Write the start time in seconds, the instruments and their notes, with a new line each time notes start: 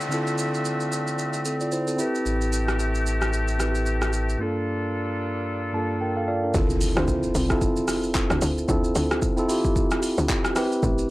Already playing: woodwind section D3 F3 A3 C4 E5, tine electric piano A4, downlifter
0.01 shaker
0.09 tine electric piano D3 C4 E4 F4, shaker
0.14 tine electric piano A4
0.27 shaker
0.38 shaker
0.54 shaker
0.65 shaker
0.80 shaker
0.92 shaker
1.07 shaker
1.19 shaker
1.33 shaker
1.45 tine electric piano C4 A4, shaker
1.61 tine electric piano F4 D5, shaker
1.72 tine electric piano E4 C5, shaker
1.88 tine electric piano C4 A4, shaker
1.97 woodwind section A3 G4, tine electric piano C4 E4 G4, shaker
2.02 tine electric piano B4
2.15 shaker
2.26 sub bass A1, shaker
2.42 shaker
2.53 shaker
2.68 cross-stick, shaker
2.80 shaker
2.95 shaker
3.07 shaker
3.22 cross-stick, shaker
3.33 shaker
3.48 shaker
3.58 tine electric piano C4 E4 G4 B4, cross-stick, shaker
3.75 shaker
3.86 shaker
4.02 cross-stick, shaker
4.13 shaker
4.29 shaker
4.38 tine electric piano G2 A#3 D4 F4, woodwind section G3 A#3 D4 F4 A4
4.43 tine electric piano A4
5.73 tine electric piano G2 A#3 D4 F4 A4 A5
6.01 tine electric piano A#4 G5
6.17 tine electric piano A4 F5
6.28 tine electric piano F4 D5 F5
6.44 tine electric piano D4 A#4
6.53 log drum bass D2, tine electric piano C4 E4 F4 A4, kick, impact, shaker
6.70 shaker
6.81 open hi-hat, shaker
6.96 log drum bass D2, tine electric piano C4 E4 F4 C5, cross-stick, shaker
7.08 kick, shaker
7.23 shaker
7.35 log drum bass C2, open hi-hat, shaker
7.49 tine electric piano C4 E4 F4 A4, kick, cross-stick, shaker
7.61 kick, shaker
7.76 shaker
7.88 cross-stick, open hi-hat, shaker
8.03 shaker
8.15 kick, clap, shaker
8.30 log drum bass D2, cross-stick, shaker
8.42 log drum bass D2, open hi-hat, shaker
8.58 shaker
8.68 log drum bass D2, tine electric piano C4 E4 F4 A4, kick, shaker
8.84 shaker
8.95 log drum bass D2, open hi-hat, shaker
9.11 cross-stick, shaker
9.22 kick, shaker
9.37 tine electric piano C4 E4 F4 A4, shaker
9.48 log drum bass D3, tine electric piano C4 E4 F4 G4, open hi-hat, shaker
9.65 kick, shaker
9.76 log drum bass D2, kick, shaker
9.91 cross-stick, shaker
10.03 open hi-hat, shaker
10.18 log drum bass D2, shaker
10.29 kick, clap, shaker
10.45 cross-stick, shaker
10.55 tine electric piano C4 E4 G4 B4, cross-stick, open hi-hat, shaker
10.72 shaker
10.83 log drum bass A1, kick, shaker
10.98 shaker